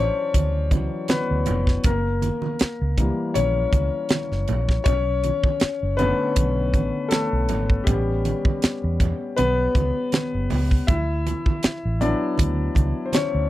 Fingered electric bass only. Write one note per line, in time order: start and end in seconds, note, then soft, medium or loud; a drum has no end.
0.35 0.72 D2 medium
0.72 0.87 C#2 medium
1.31 1.44 D2 medium
1.48 1.76 F1 medium
1.85 2.29 F#1 medium
2.61 muted fingered electric bass stroke medium
2.82 3.10 C#2 medium
3.36 3.64 A#1 medium
3.73 3.88 C#2 medium
4.32 4.45 F#1 medium
4.50 4.78 A#1 medium
4.86 5.30 B1 medium
5.63 muted fingered electric bass stroke soft
5.83 6.11 F#1 medium
6.37 6.74 B1 medium
6.74 6.89 A1 medium
7.33 7.50 B1 medium
7.50 7.78 G#1 medium
7.88 8.31 A1 medium
8.64 muted fingered electric bass stroke soft
8.84 9.12 E2 medium
9.39 9.67 B1 medium
9.75 9.91 C#2 medium
10.34 10.47 F#1 medium
10.52 10.80 C#2 medium
10.89 11.32 D2 medium
11.65 muted fingered electric bass stroke soft
11.85 12.13 A1 medium
12.39 12.67 D2 medium
12.76 12.92 C#2 medium
13.35 13.47 D2 medium